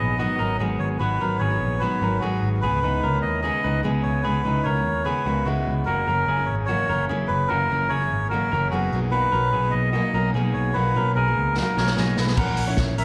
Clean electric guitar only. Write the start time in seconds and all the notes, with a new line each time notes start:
Already playing: B3 G#4
0.19 B3 F#4
0.39 C#4 A#4
0.60 B3 G#4
1.01 B3 F#4
1.21 C#4 A#4
1.41 B3 G#4
1.82 B3 F#4
2.02 C#4 A#4
2.22 B3 G#4
2.63 B3 G#4
2.83 D#4 B4
3.03 C#4 A#4
3.44 B3 G#4
3.64 D#4 B4
3.85 B3 G#4
4.25 B3 G#4
4.45 D#4 B4
4.66 C#4 A#4
5.06 B3 G#4
5.26 A#3 F#4
5.47 G#3 E4
5.87 A#3 F#4
6.07 C#4 A#4
6.28 C#4 G#4
6.69 A#3 F#4
6.89 C#4 A#4
7.09 C#4 G#4
7.50 A#3 F#4
7.71 C#4 A#4
7.91 C#4 G#4
8.31 A#3 F#4
8.52 C#4 A#4
8.72 B3 G#4
9.12 A#3 F#4
9.32 C#4 A#4
9.53 B3 G#4
9.93 A#3 F#4
10.14 C#4 A#4
10.35 B3 G#4
10.76 A#3 F#4
10.96 C#4 A#4
11.17 B3 G#4
11.56 A#3 F#4
11.77 C#4 A#4
11.97 B3 G#4
12.37 C#4 A#4
12.68 E4 C#5
12.98 C#4 A#4